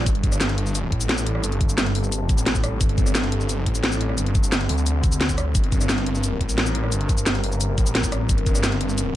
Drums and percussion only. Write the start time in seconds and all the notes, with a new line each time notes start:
0.06 kick, closed hi-hat, shaker
0.15 closed hi-hat
0.24 kick, closed hi-hat, shaker
0.32 cross-stick, shaker
0.41 snare, closed hi-hat, shaker
0.49 closed hi-hat
0.58 closed hi-hat
0.66 shaker
0.75 closed hi-hat, shaker
0.92 kick, closed hi-hat
1.01 closed hi-hat, shaker
1.09 snare, closed hi-hat
1.18 shaker
1.26 closed hi-hat
1.35 cross-stick
1.44 closed hi-hat, shaker
1.52 closed hi-hat
1.61 kick, closed hi-hat, shaker
1.69 shaker
1.78 snare, closed hi-hat, shaker
1.86 closed hi-hat
1.95 open hi-hat
2.04 shaker
2.12 closed hi-hat, shaker
2.29 kick, closed hi-hat, shaker
2.38 closed hi-hat, shaker
2.46 snare, closed hi-hat
2.55 kick, shaker
2.64 cross-stick, closed hi-hat, shaker
2.81 kick, closed hi-hat, shaker
2.89 closed hi-hat
2.98 kick, closed hi-hat, shaker
3.06 cross-stick, shaker
3.15 snare, closed hi-hat, shaker
3.24 closed hi-hat
3.32 closed hi-hat
3.41 shaker
3.49 closed hi-hat, shaker
3.66 kick, closed hi-hat
3.75 closed hi-hat, shaker
3.84 snare, closed hi-hat
3.92 shaker
4.01 closed hi-hat
4.09 cross-stick
4.18 closed hi-hat, shaker
4.26 closed hi-hat
4.35 kick, closed hi-hat, shaker
4.44 shaker
4.52 snare, closed hi-hat, shaker
4.61 closed hi-hat
4.69 open hi-hat
4.78 shaker
4.86 closed hi-hat, shaker
5.04 kick, closed hi-hat, shaker
5.12 closed hi-hat, shaker
5.21 snare, closed hi-hat
5.29 kick, shaker
5.38 cross-stick, closed hi-hat, shaker
5.55 kick, closed hi-hat, shaker
5.64 closed hi-hat
5.72 kick, closed hi-hat, shaker
5.81 cross-stick, shaker
5.89 snare, closed hi-hat, shaker
5.98 closed hi-hat
6.06 closed hi-hat
6.15 shaker
6.24 closed hi-hat, shaker
6.41 kick, closed hi-hat
6.49 closed hi-hat, shaker
6.58 snare, closed hi-hat
6.66 shaker
6.75 closed hi-hat
6.84 cross-stick
6.92 closed hi-hat, shaker
7.01 closed hi-hat
7.09 kick, closed hi-hat, shaker
7.18 shaker
7.26 snare, closed hi-hat, shaker
7.35 closed hi-hat
7.44 open hi-hat
7.52 shaker
7.61 closed hi-hat, shaker
7.78 kick, closed hi-hat, shaker
7.86 closed hi-hat, shaker
7.95 snare, closed hi-hat
8.04 kick, shaker
8.12 cross-stick, closed hi-hat, shaker
8.29 kick, closed hi-hat, shaker
8.38 closed hi-hat
8.46 kick, closed hi-hat, shaker
8.55 cross-stick, shaker
8.64 snare, closed hi-hat, shaker
8.72 closed hi-hat
8.81 closed hi-hat
8.89 shaker
8.98 closed hi-hat, shaker